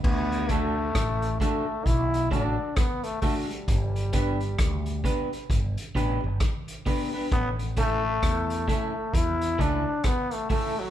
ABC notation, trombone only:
X:1
M:4/4
L:1/16
Q:"Swing 16ths" 1/4=66
K:D
V:1 name="Trombone"
B,2 A,4 A,2 E2 D2 B, A, A, G,- | G,6- G, z8 z | B,2 A,4 A,2 E2 D2 B, A, A, F, |]